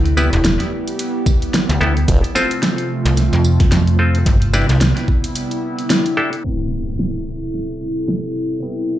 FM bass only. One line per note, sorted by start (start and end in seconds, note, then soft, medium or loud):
0.00 0.30 D2 loud
0.33 0.58 E1 loud
1.69 1.79 D2 loud
1.81 2.06 D2 loud
3.06 3.30 C2 loud
3.33 3.70 F2 loud
3.72 4.24 F2 loud
4.26 4.67 G1 loud
4.69 4.94 C2 loud